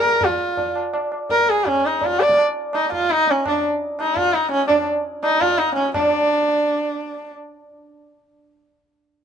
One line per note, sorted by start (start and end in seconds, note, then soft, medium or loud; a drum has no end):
0.00 0.26 A#4 loud
0.00 tabla ge medium
0.21 0.77 F4 medium
0.21 tabla tin loud
0.21 tabla ge loud
0.57 tabla tin medium
0.57 tabla ge medium
0.75 tabla na medium
0.93 tabla na medium
1.12 tabla na medium
1.29 1.51 A#4 loud
1.29 tabla tin medium
1.29 tabla ge medium
1.50 1.69 G#4 loud
1.66 1.87 C#4 loud
1.66 tabla tin medium
1.66 tabla ge medium
1.86 2.06 D#4 medium
2.01 2.22 F4 loud
2.01 tabla tin loud
2.01 tabla ge medium
2.20 2.38 D5 loud
2.20 tabla na medium
2.29 tabla ke medium
2.38 tabla na medium
2.73 2.91 D#4 loud
2.73 tabla na medium
2.92 3.13 F4 loud
2.92 tabla tin medium
2.92 tabla ge medium
3.10 3.32 D#4 loud
3.10 tabla te medium
3.27 3.47 C#4 loud
3.27 tabla te medium
3.46 3.63 D4 medium
3.46 tabla na loud
3.46 tabla ge loud
3.99 4.18 D#4 medium
3.99 tabla na medium
4.16 4.35 F4 loud
4.16 tabla tin medium
4.16 tabla ge medium
4.34 4.51 D#4 loud
4.34 tabla te medium
4.52 4.67 C#4 loud
4.52 tabla te medium
4.68 4.85 D4 medium
4.68 tabla na loud
4.68 tabla ge medium
5.23 5.43 D#4 loud
5.23 tabla na medium
5.41 5.60 F4 loud
5.41 tabla tin medium
5.41 tabla ge medium
5.58 5.75 D#4 loud
5.58 tabla te medium
5.75 5.92 C#4 loud
5.75 tabla te medium
5.94 7.30 D4 loud
5.94 tabla na loud
5.94 tabla ge loud